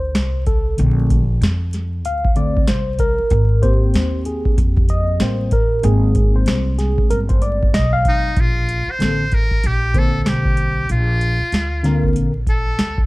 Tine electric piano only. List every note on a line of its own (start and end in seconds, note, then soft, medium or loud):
0.00 0.43 C5 loud
0.47 0.76 A4 medium
0.78 1.22 D3 medium
0.78 1.23 A3 medium
0.78 1.23 C4 medium
2.06 2.38 F5 loud
2.36 2.65 D3 medium
2.36 2.65 A3 medium
2.36 2.65 C4 medium
2.36 2.66 D5 loud
2.68 3.01 C5 loud
3.00 3.65 A#4 loud
3.62 5.19 A#3 medium
3.62 5.20 C4 medium
3.62 6.11 G4 medium
3.62 4.22 C5 medium
4.26 4.55 G#4 medium
4.90 5.22 D#5 medium
5.21 5.49 G3 medium
5.21 5.49 A#3 medium
5.21 5.50 C4 medium
5.21 5.54 C5 medium
5.53 5.85 A#4 medium
5.83 8.32 G#3 medium
5.83 8.32 A#3 medium
5.83 8.32 C4 medium
5.83 6.36 G#4 medium
6.36 6.76 C5 medium
6.79 7.08 G#4 medium
7.10 7.19 A#4 loud
7.29 7.42 C5 medium
7.42 7.74 D5 loud
7.74 7.91 D#5 loud
7.93 8.34 F5 loud
8.99 9.23 D3 medium
8.99 9.24 A#3 medium
8.99 9.24 C4 medium
8.99 9.24 A4 medium
9.94 10.84 D3 medium
9.94 10.84 A#3 medium
9.94 10.84 C4 medium
9.94 10.85 C5 medium
11.83 12.30 D3 medium
11.83 12.31 A#3 medium
11.83 12.31 C4 medium
11.83 12.31 A#4 medium